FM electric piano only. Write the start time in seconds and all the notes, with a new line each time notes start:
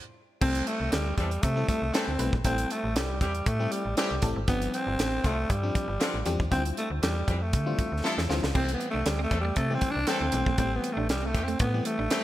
0.41 G3 A3 C4 E4 A4
1.56 G3 A3 C4 E4 A4
1.93 G3 A3 C4 E4 A4
2.19 G3 A3 C4 E4 B4
2.44 G3 A3 C4 E4 A4
3.59 G3 A3 C4 E4 G4
3.96 G3 A3 C4 E4 A4
4.21 G3 A3 C4 E4 A4
4.48 F3 G3 C4 D4 G4
5.63 F3 G3 C4 D4 G4
6.00 F3 G3 C4 D4 F4
6.25 F3 G3 C4 D4 G4
6.51 G3 C4 D4 E4 F4
7.66 E3 G3 C4 D4 F4
8.03 E3 G3 C4 D4 F4
8.29 E3 G3 C4 D4 F4
8.54 E3 G3 A3 C4 G4
9.70 E3 G3 A3 C4 G4
10.07 E3 G3 A3 C4 A4
10.33 E3 G3 A3 C4 G4
10.58 E3 G3 A3 C4 G4
11.73 E3 G3 A3 C4 G4
12.11 E3 G3 A3 C4 A4